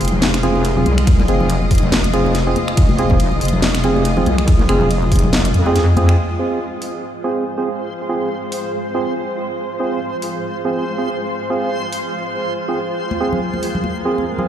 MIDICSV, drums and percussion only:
0, 0, Header, 1, 2, 480
1, 0, Start_track
1, 0, Key_signature, -4, "minor"
1, 0, Tempo, 425532
1, 1211, Time_signature, 4, 2, 24, 8
1, 16335, End_track
2, 0, Start_track
2, 0, Title_t, "Drums"
2, 8, Note_on_c, 9, 46, 90
2, 54, Note_on_c, 9, 42, 65
2, 87, Note_off_c, 9, 42, 0
2, 87, Note_on_c, 9, 42, 80
2, 121, Note_off_c, 9, 46, 0
2, 141, Note_on_c, 9, 64, 85
2, 200, Note_off_c, 9, 42, 0
2, 247, Note_on_c, 9, 38, 123
2, 247, Note_on_c, 9, 51, 67
2, 247, Note_on_c, 9, 63, 101
2, 254, Note_off_c, 9, 64, 0
2, 360, Note_off_c, 9, 38, 0
2, 360, Note_off_c, 9, 51, 0
2, 360, Note_off_c, 9, 63, 0
2, 385, Note_on_c, 9, 26, 70
2, 385, Note_on_c, 9, 38, 38
2, 385, Note_on_c, 9, 42, 81
2, 488, Note_off_c, 9, 42, 0
2, 488, Note_on_c, 9, 42, 51
2, 498, Note_off_c, 9, 26, 0
2, 498, Note_off_c, 9, 38, 0
2, 601, Note_off_c, 9, 42, 0
2, 626, Note_on_c, 9, 63, 67
2, 730, Note_on_c, 9, 42, 80
2, 730, Note_on_c, 9, 51, 46
2, 739, Note_off_c, 9, 63, 0
2, 843, Note_off_c, 9, 42, 0
2, 843, Note_off_c, 9, 51, 0
2, 868, Note_on_c, 9, 64, 77
2, 969, Note_on_c, 9, 63, 87
2, 970, Note_on_c, 9, 42, 53
2, 981, Note_off_c, 9, 64, 0
2, 1081, Note_off_c, 9, 63, 0
2, 1083, Note_off_c, 9, 42, 0
2, 1105, Note_on_c, 9, 26, 67
2, 1105, Note_on_c, 9, 42, 36
2, 1209, Note_off_c, 9, 42, 0
2, 1209, Note_on_c, 9, 42, 77
2, 1209, Note_on_c, 9, 51, 69
2, 1210, Note_on_c, 9, 36, 119
2, 1217, Note_off_c, 9, 26, 0
2, 1322, Note_off_c, 9, 36, 0
2, 1322, Note_off_c, 9, 42, 0
2, 1322, Note_off_c, 9, 51, 0
2, 1347, Note_on_c, 9, 63, 86
2, 1448, Note_on_c, 9, 42, 52
2, 1460, Note_off_c, 9, 63, 0
2, 1561, Note_off_c, 9, 42, 0
2, 1582, Note_on_c, 9, 64, 87
2, 1687, Note_on_c, 9, 42, 76
2, 1687, Note_on_c, 9, 51, 47
2, 1695, Note_off_c, 9, 64, 0
2, 1800, Note_off_c, 9, 42, 0
2, 1800, Note_off_c, 9, 51, 0
2, 1826, Note_on_c, 9, 63, 57
2, 1927, Note_on_c, 9, 46, 97
2, 1929, Note_on_c, 9, 36, 59
2, 1939, Note_off_c, 9, 63, 0
2, 1974, Note_on_c, 9, 42, 65
2, 2008, Note_off_c, 9, 42, 0
2, 2008, Note_on_c, 9, 42, 82
2, 2040, Note_off_c, 9, 46, 0
2, 2042, Note_off_c, 9, 36, 0
2, 2065, Note_on_c, 9, 64, 96
2, 2121, Note_off_c, 9, 42, 0
2, 2168, Note_on_c, 9, 38, 118
2, 2168, Note_on_c, 9, 51, 70
2, 2175, Note_on_c, 9, 63, 99
2, 2178, Note_off_c, 9, 64, 0
2, 2281, Note_off_c, 9, 38, 0
2, 2281, Note_off_c, 9, 51, 0
2, 2288, Note_off_c, 9, 63, 0
2, 2298, Note_on_c, 9, 64, 86
2, 2304, Note_on_c, 9, 42, 80
2, 2409, Note_off_c, 9, 42, 0
2, 2409, Note_on_c, 9, 42, 51
2, 2411, Note_off_c, 9, 64, 0
2, 2522, Note_off_c, 9, 42, 0
2, 2552, Note_on_c, 9, 63, 69
2, 2648, Note_on_c, 9, 38, 36
2, 2648, Note_on_c, 9, 42, 76
2, 2648, Note_on_c, 9, 51, 51
2, 2665, Note_off_c, 9, 63, 0
2, 2761, Note_off_c, 9, 38, 0
2, 2761, Note_off_c, 9, 42, 0
2, 2761, Note_off_c, 9, 51, 0
2, 2888, Note_on_c, 9, 42, 54
2, 2890, Note_on_c, 9, 63, 84
2, 3001, Note_off_c, 9, 42, 0
2, 3003, Note_off_c, 9, 63, 0
2, 3024, Note_on_c, 9, 26, 67
2, 3024, Note_on_c, 9, 42, 35
2, 3128, Note_off_c, 9, 42, 0
2, 3128, Note_on_c, 9, 42, 82
2, 3128, Note_on_c, 9, 51, 70
2, 3129, Note_on_c, 9, 36, 118
2, 3137, Note_off_c, 9, 26, 0
2, 3241, Note_off_c, 9, 42, 0
2, 3241, Note_off_c, 9, 51, 0
2, 3242, Note_off_c, 9, 36, 0
2, 3261, Note_on_c, 9, 63, 97
2, 3367, Note_on_c, 9, 42, 53
2, 3374, Note_off_c, 9, 63, 0
2, 3480, Note_off_c, 9, 42, 0
2, 3495, Note_on_c, 9, 64, 93
2, 3505, Note_on_c, 9, 36, 61
2, 3607, Note_on_c, 9, 42, 80
2, 3607, Note_on_c, 9, 51, 50
2, 3608, Note_off_c, 9, 64, 0
2, 3618, Note_off_c, 9, 36, 0
2, 3720, Note_off_c, 9, 42, 0
2, 3720, Note_off_c, 9, 51, 0
2, 3742, Note_on_c, 9, 63, 62
2, 3848, Note_on_c, 9, 46, 101
2, 3854, Note_off_c, 9, 63, 0
2, 3895, Note_on_c, 9, 42, 66
2, 3929, Note_off_c, 9, 42, 0
2, 3929, Note_on_c, 9, 42, 83
2, 3961, Note_off_c, 9, 46, 0
2, 3980, Note_on_c, 9, 64, 102
2, 4042, Note_off_c, 9, 42, 0
2, 4088, Note_on_c, 9, 38, 115
2, 4088, Note_on_c, 9, 51, 71
2, 4090, Note_on_c, 9, 63, 91
2, 4093, Note_off_c, 9, 64, 0
2, 4201, Note_off_c, 9, 38, 0
2, 4201, Note_off_c, 9, 51, 0
2, 4202, Note_off_c, 9, 63, 0
2, 4225, Note_on_c, 9, 26, 67
2, 4225, Note_on_c, 9, 38, 37
2, 4225, Note_on_c, 9, 42, 82
2, 4329, Note_off_c, 9, 42, 0
2, 4329, Note_on_c, 9, 42, 51
2, 4338, Note_off_c, 9, 26, 0
2, 4338, Note_off_c, 9, 38, 0
2, 4442, Note_off_c, 9, 42, 0
2, 4470, Note_on_c, 9, 63, 66
2, 4569, Note_on_c, 9, 42, 81
2, 4569, Note_on_c, 9, 51, 51
2, 4583, Note_off_c, 9, 63, 0
2, 4682, Note_off_c, 9, 42, 0
2, 4682, Note_off_c, 9, 51, 0
2, 4701, Note_on_c, 9, 64, 86
2, 4809, Note_on_c, 9, 42, 54
2, 4814, Note_off_c, 9, 64, 0
2, 4817, Note_on_c, 9, 63, 96
2, 4922, Note_off_c, 9, 42, 0
2, 4930, Note_off_c, 9, 63, 0
2, 4945, Note_on_c, 9, 26, 65
2, 4945, Note_on_c, 9, 42, 37
2, 5050, Note_off_c, 9, 42, 0
2, 5050, Note_on_c, 9, 42, 82
2, 5050, Note_on_c, 9, 51, 69
2, 5051, Note_on_c, 9, 36, 123
2, 5058, Note_off_c, 9, 26, 0
2, 5163, Note_off_c, 9, 36, 0
2, 5163, Note_off_c, 9, 42, 0
2, 5163, Note_off_c, 9, 51, 0
2, 5183, Note_on_c, 9, 63, 94
2, 5291, Note_on_c, 9, 26, 62
2, 5291, Note_on_c, 9, 42, 56
2, 5295, Note_off_c, 9, 63, 0
2, 5404, Note_off_c, 9, 26, 0
2, 5404, Note_off_c, 9, 42, 0
2, 5421, Note_on_c, 9, 64, 94
2, 5534, Note_off_c, 9, 64, 0
2, 5534, Note_on_c, 9, 42, 79
2, 5534, Note_on_c, 9, 51, 50
2, 5647, Note_off_c, 9, 42, 0
2, 5647, Note_off_c, 9, 51, 0
2, 5667, Note_on_c, 9, 63, 69
2, 5771, Note_on_c, 9, 46, 104
2, 5772, Note_on_c, 9, 36, 60
2, 5780, Note_off_c, 9, 63, 0
2, 5816, Note_on_c, 9, 42, 69
2, 5851, Note_off_c, 9, 42, 0
2, 5851, Note_on_c, 9, 42, 83
2, 5884, Note_off_c, 9, 36, 0
2, 5884, Note_off_c, 9, 46, 0
2, 5905, Note_on_c, 9, 64, 97
2, 5964, Note_off_c, 9, 42, 0
2, 6007, Note_on_c, 9, 63, 86
2, 6011, Note_on_c, 9, 38, 121
2, 6011, Note_on_c, 9, 51, 68
2, 6018, Note_off_c, 9, 64, 0
2, 6120, Note_off_c, 9, 63, 0
2, 6124, Note_off_c, 9, 38, 0
2, 6124, Note_off_c, 9, 51, 0
2, 6148, Note_on_c, 9, 42, 85
2, 6148, Note_on_c, 9, 64, 83
2, 6252, Note_off_c, 9, 42, 0
2, 6252, Note_on_c, 9, 42, 53
2, 6261, Note_off_c, 9, 64, 0
2, 6365, Note_off_c, 9, 42, 0
2, 6382, Note_on_c, 9, 63, 62
2, 6493, Note_on_c, 9, 38, 36
2, 6493, Note_on_c, 9, 42, 84
2, 6493, Note_on_c, 9, 51, 49
2, 6495, Note_off_c, 9, 63, 0
2, 6606, Note_off_c, 9, 38, 0
2, 6606, Note_off_c, 9, 42, 0
2, 6606, Note_off_c, 9, 51, 0
2, 6728, Note_on_c, 9, 63, 96
2, 6733, Note_on_c, 9, 42, 54
2, 6841, Note_off_c, 9, 63, 0
2, 6846, Note_off_c, 9, 42, 0
2, 6868, Note_on_c, 9, 26, 62
2, 6868, Note_on_c, 9, 42, 38
2, 6981, Note_off_c, 9, 26, 0
2, 6981, Note_off_c, 9, 42, 0
2, 7690, Note_on_c, 9, 46, 87
2, 7803, Note_off_c, 9, 46, 0
2, 9611, Note_on_c, 9, 46, 85
2, 9723, Note_off_c, 9, 46, 0
2, 11531, Note_on_c, 9, 46, 85
2, 11644, Note_off_c, 9, 46, 0
2, 13452, Note_on_c, 9, 46, 81
2, 13565, Note_off_c, 9, 46, 0
2, 14789, Note_on_c, 9, 63, 84
2, 14902, Note_off_c, 9, 63, 0
2, 15032, Note_on_c, 9, 64, 86
2, 15145, Note_off_c, 9, 64, 0
2, 15269, Note_on_c, 9, 63, 64
2, 15372, Note_on_c, 9, 46, 82
2, 15381, Note_off_c, 9, 63, 0
2, 15485, Note_off_c, 9, 46, 0
2, 15509, Note_on_c, 9, 64, 87
2, 15607, Note_on_c, 9, 63, 79
2, 15622, Note_off_c, 9, 64, 0
2, 15720, Note_off_c, 9, 63, 0
2, 15998, Note_on_c, 9, 63, 59
2, 16110, Note_off_c, 9, 63, 0
2, 16225, Note_on_c, 9, 64, 69
2, 16335, Note_off_c, 9, 64, 0
2, 16335, End_track
0, 0, End_of_file